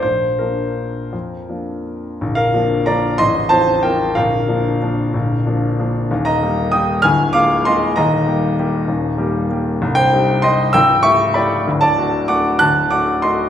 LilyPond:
<<
  \new Staff \with { instrumentName = "Grand piano" } { \time 3/4 \key bes \major \tempo 4 = 189 c''4 bes'2~ | bes'2~ bes'8 r8 | r8 <bes' f''>4. <d'' bes''>4 | <ees'' c'''>4 <c'' a''>4 <bes' g''>4 |
<bes' f''>2.~ | <bes' f''>2. | r8 <ees'' bes''>4. <g'' ees'''>4 | <aes'' f'''>4 <f'' d'''>4 <ees'' c'''>4 |
<ees'' bes''>2.~ | <ees'' bes''>2. | \key d \phrygian r8 <c'' g''>4. <ees'' c'''>4 | <g'' e'''>4 <e'' cis'''>4 <d'' b''>4 |
r8 <d'' a''>4. <fis'' d'''>4 | <a'' fis'''>4 <fis'' d'''>4 <ees'' c'''>4 | }
  \new Staff \with { instrumentName = "Grand piano" } { \time 3/4 \key bes \major bes,,4 <f bes d'>2 | f,4 <f bes d'>2 | <bes,,, bes,,>4 <f bes d'>4 <f bes d'>4 | <a,,, a,,>4 <f c' ees'>4 <f c' ees'>4 |
<bes,,, bes,,>4 <f bes d'>4 <f bes d'>4 | <bes,,, bes,,>4 <f bes d'>4 <f bes d'>4 | <ees,, ees,>4 <g bes ees'>4 <g bes ees'>4 | <d,, d,>4 <aes bes f'>4 <aes bes f'>4 |
<ees,, ees,>4 <g bes g'>4 <g bes g'>4 | <ees,, ees,>4 <g bes g'>4 <g bes g'>4 | \key d \phrygian <c,, c,>4 <g ees' g'>4 <g ees' g'>4 | <cis,, cis,>4 <a e' g'>4 <a e' g'>4 |
<d,, d,>4 <a d' fis'>4 <a d' fis'>4 | <d,, d,>4 <a d' fis'>4 <a d' fis'>4 | }
>>